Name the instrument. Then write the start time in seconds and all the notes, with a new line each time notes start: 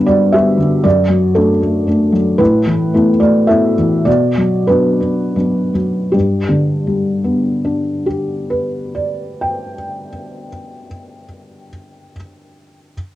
felt piano
Already playing: G2 D3 G3 B3 D4 B4
0.06 G3 F#4 D5
0.32 G3 B3 D4 G4 E5
0.58 D3
0.84 F#2 F#4 D5
1.09 F#3
1.35 A3 D4 A4
1.62 A3
1.87 A3 D4
2.12 F#3
2.38 A2 E4 B4
2.67 E3
2.94 A3 B3 E4
3.20 A3 F#4 D5
3.47 A3 B3 E4 A4 E5
3.78 E3
4.05 B2 F#4 D5
4.37 F#3
4.67 F#3 B3 D4 B4
5.00 B3
5.36 F#3 B3 D4
5.74 F#3
6.12 G2 G4
6.49 D3
6.87 G3
7.24 B3
7.65 D4
8.06 G4
8.50 B4
8.95 D5
9.41 G5